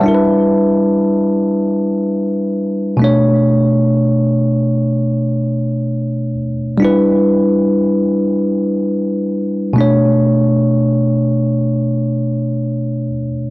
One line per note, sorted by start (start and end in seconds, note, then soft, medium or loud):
0.00 2.94 G3 medium
0.00 2.96 D4 medium
0.00 0.24 E5 medium
0.00 0.24 A5 medium
0.06 2.97 E4 medium
0.06 0.13 A#4 medium
0.15 3.01 B4 medium
2.97 6.33 B2 medium
2.97 6.34 A3 medium
3.02 6.35 D4 medium
3.02 6.36 C#5 medium
6.78 9.71 G3 medium
6.78 9.72 D4 medium
6.82 9.73 E4 medium
6.82 9.74 B4 medium
9.73 13.09 B2 medium
9.73 13.10 A3 medium
9.78 13.11 D4 medium
9.78 13.12 C#5 medium